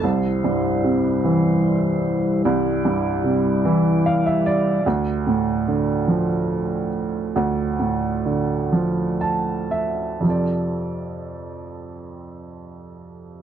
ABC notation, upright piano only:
X:1
M:6/8
L:1/16
Q:3/8=48
K:F
V:1 name="Upright piano"
z12 | z8 f e d2 | z12 | z8 a2 e2 |
z12 |]
V:2 name="Upright piano" clef=bass
C,,2 G,,2 C,2 E,6 | C,,2 G,,2 C,2 E,6 | D,,2 A,,2 D,2 F,6 | D,,2 A,,2 D,2 F,6 |
[F,,C,F,CAd]12 |]